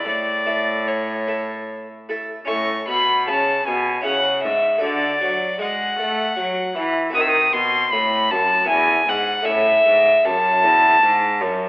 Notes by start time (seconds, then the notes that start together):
0.06 A2 D5
0.46 A3 E4 A4
0.88 C#5
1.28 A3 E4 A4
2.09 A3 E4 A4
2.45 C#4 E4 A4 C#6
2.49 A2
2.87 B2 B5
3.27 C#3 A5
3.67 B2 G#5
4.01 C#4 E4 G#4
4.05 C#3 F#5
4.43 G#2 E5
4.78 A3 D4 F#4
4.83 D3 D5
5.21 F#3
5.59 G#3 F#5
5.99 A3
6.36 F#3
6.76 E3
7.10 A3 C4 F#4
7.15 D#3 D#6
7.21 E6
7.29 D#6
7.53 B2 C6
7.92 A2 B5
8.31 F#2 A5
8.65 B3 E4
8.69 E2 G#5
9.08 G#2 F#5
9.42 A3 C#4 E4 E5
9.46 A2
9.86 G#2
10.25 F#2 A5
10.64 E2
11.02 G#2
11.41 F#2